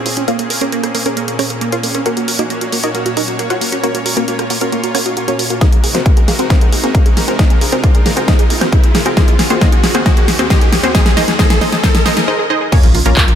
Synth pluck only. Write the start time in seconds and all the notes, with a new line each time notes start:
0.06 F4
0.17 F4
0.28 F4 A#4 C#5 F5
0.39 A#4
0.50 A#4
0.61 C#4 G#4 A#4 C#5
0.72 A#4
0.83 A#4
0.95 A#4
1.06 C#4 G#4 A#4 C#5
1.17 A#4
1.28 A#4
1.39 C#4 G#4 A#4 C#5
1.50 A#4
1.61 A#4
1.72 F4 A#4 C#5 F5
1.84 A#4
1.95 A#4
2.06 F#4 A#4 C#5 F#5
2.17 F#4
2.28 F#4
2.39 D#4 F#4 A#4 D#5
2.50 F#4
2.61 F#4
2.72 F#4
2.84 D#4 F#4 A#4 D#5
2.95 F#4
3.06 F#4
3.17 D#4 F#4 A#4 D#5
3.28 F#4
3.39 F#4
3.50 F#4 A#4 C#5 F#5
3.61 F#4
3.72 F#4
3.83 C#4 F#4 A#4 C#5
3.95 F#4
4.06 F#4
4.17 A#3 C#4 F#4 A#4
4.28 F#4
4.39 F#4
4.50 F#4
4.61 A#3 C#4 F#4 A#4
4.72 F#4
4.84 F#4
4.95 C#4 F#4 A#4 C#5
5.06 F#4
5.17 F#4
5.28 C#4 F#4 A#4 C#5
5.39 F#4
5.50 F#4
5.61 D#4 G#4 C5 D#5
5.72 G#4
5.83 G#4
5.95 C4 F#4 G#4 C5
6.06 G#4
6.17 G#4
6.28 G#4
6.39 C4 F#4 G#4 C5
6.50 D#4 G#4 C5 D#5
6.61 G#4
6.72 G#4
6.84 C4 F#4 G#4 C5
6.95 G#4
7.06 G#4
7.17 G#4
7.28 C4 F#4 G#4 C5
7.39 D#4 G#4 C5 D#5
7.50 G#4
7.61 G#4
7.72 C4 F#4 G#4 C5
7.83 G#4
7.95 G#4
8.06 G#4
8.17 C4 F#4 G#4 C5
8.28 D#4 G#4 C5 D#5
8.39 G#4
8.50 G#4
8.61 C4 F#4 G#4 C5
8.72 G#4
8.84 G#4
8.95 G#4
9.06 C4 F#4 G#4 C5
9.17 D#4 G#4 C5 D#5
9.28 G#4
9.39 G#4
9.50 C4 F#4 G#4 C5
9.62 D#4 G#4 C5 D#5
9.73 G#4
9.84 G#4
9.95 C4 F#4 G#4 C5
10.06 D#4 G#4 C5 D#5
10.17 G#4
10.28 G#4
10.39 C4 F#4 G#4 C5
10.50 D#4 G#4 C5 D#5
10.61 G#4
10.73 G#4
10.83 C4 F#4 G#4 C5
10.95 D#4 G#4 C5 D#5
11.06 G#4
11.17 D#4 G#4 C5 D#5
11.28 G#4
11.39 D#4 G#4 C5 D#5
11.50 G#4
11.61 D#4 G#4 C5 D#5
11.72 G#4
11.83 D#4 G#4 C5 D#5
11.95 G#4
12.06 D#4 G#4 C5 D#5
12.17 G#4
12.28 D#4 G#4 C5 D#5
12.39 G#4
12.50 D#4 G#4 C5 D#5
12.61 G#4
12.72 C#4 G#4 A#4 C#5
12.84 F4
12.95 F4
13.06 A#3 C#4 F4 A#4
13.17 F4
13.28 F4